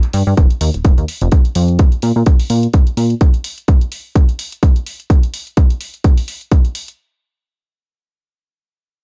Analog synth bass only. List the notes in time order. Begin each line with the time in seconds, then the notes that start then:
0.14 G2
0.27 G2
0.37 D#1
0.61 D#2
0.74 D#1
0.85 D#1
0.98 D#2
1.22 F1
1.56 F2
2.03 A#2
2.16 A#2
2.50 A#2
2.97 A#2